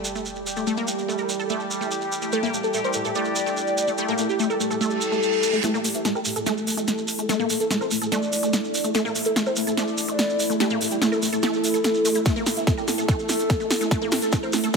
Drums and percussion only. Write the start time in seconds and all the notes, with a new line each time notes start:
0.05 shekere
0.15 shekere
0.26 shekere
0.35 shekere
0.47 shekere
0.56 shekere
0.67 shekere
0.77 shekere
0.88 shekere
0.98 shekere
1.09 shekere
1.18 shekere
1.29 shekere
1.40 shekere
1.50 shekere
1.60 shekere
1.71 shekere
1.82 shekere
1.91 shekere
2.01 shekere
2.12 shekere
2.22 shekere
2.32 shekere
2.44 shekere
2.54 shekere
2.64 shekere
2.74 shekere
2.85 shekere
2.93 shekere
3.05 shekere
3.15 shekere
3.25 shekere
3.36 shekere
3.47 shekere
3.57 shekere
3.67 shekere
3.78 shekere
3.87 shekere
3.98 shekere
4.08 shekere
4.18 shekere
4.29 shekere
4.39 shekere
4.50 shekere
4.60 shekere
4.71 shekere
4.81 shekere
4.90 shekere
5.01 shekere
5.12 shekere
5.23 shekere
5.33 shekere
5.43 shekere
5.53 shekere
5.64 snare, closed hi-hat, shekere
5.74 shekere
5.84 open hi-hat, shekere
5.94 closed hi-hat, shekere
6.05 snare, closed hi-hat, shekere
6.15 shekere
6.25 open hi-hat, shekere
6.36 closed hi-hat, shekere
6.46 snare, closed hi-hat, shekere
6.58 shekere
6.67 open hi-hat, shekere
6.77 closed hi-hat, shekere
6.88 snare, closed hi-hat, shekere
6.98 shekere
7.08 open hi-hat, shekere
7.19 closed hi-hat, shekere
7.29 snare, closed hi-hat, shekere
7.40 shekere
7.50 open hi-hat, shekere
7.60 closed hi-hat, shekere
7.71 snare, closed hi-hat, shekere
7.81 shekere
7.91 open hi-hat, shekere
8.02 closed hi-hat, shekere
8.12 snare, closed hi-hat, shekere
8.22 shekere
8.32 open hi-hat, shekere
8.43 closed hi-hat, shekere
8.53 snare, closed hi-hat, shekere
8.64 shekere
8.74 open hi-hat, shekere
8.84 closed hi-hat, shekere
8.94 snare, closed hi-hat, shekere
9.05 shekere
9.15 open hi-hat, shekere
9.25 closed hi-hat, shekere
9.36 snare, closed hi-hat, shekere
9.46 shekere
9.56 open hi-hat, shekere
9.67 closed hi-hat, shekere
9.77 snare, closed hi-hat, shekere
9.88 shekere
9.98 open hi-hat, shekere
10.08 closed hi-hat, shekere
10.19 snare, closed hi-hat, shekere
10.30 shekere
10.39 open hi-hat, shekere
10.50 closed hi-hat, shekere
10.60 snare, closed hi-hat, shekere
10.70 shekere
10.81 open hi-hat, shekere
10.91 closed hi-hat, shekere
11.02 snare, closed hi-hat, shekere
11.12 shekere
11.22 open hi-hat, shekere
11.33 closed hi-hat, shekere
11.43 snare, closed hi-hat, shekere
11.53 shekere
11.64 open hi-hat, shekere
11.74 closed hi-hat, shekere
11.84 snare, closed hi-hat, shekere
11.94 shekere
12.05 open hi-hat, shekere
12.15 closed hi-hat, shekere
12.26 kick, snare, closed hi-hat, shekere
12.36 shekere
12.46 snare, open hi-hat, shekere
12.57 closed hi-hat, shekere
12.67 kick, snare, closed hi-hat, shekere
12.78 shekere
12.88 snare, open hi-hat, shekere
12.98 closed hi-hat, shekere
13.08 kick, snare, closed hi-hat, shekere
13.19 shekere
13.29 snare, open hi-hat, shekere
13.39 closed hi-hat, shekere
13.50 kick, snare, closed hi-hat, shekere
13.60 shekere
13.71 snare, open hi-hat, shekere
13.81 closed hi-hat, shekere
13.91 kick, snare, closed hi-hat, shekere
14.02 shekere
14.12 snare, open hi-hat, shekere
14.22 closed hi-hat, shekere
14.32 kick, snare, closed hi-hat, shekere
14.43 shekere
14.53 snare, open hi-hat, shekere
14.64 closed hi-hat, shekere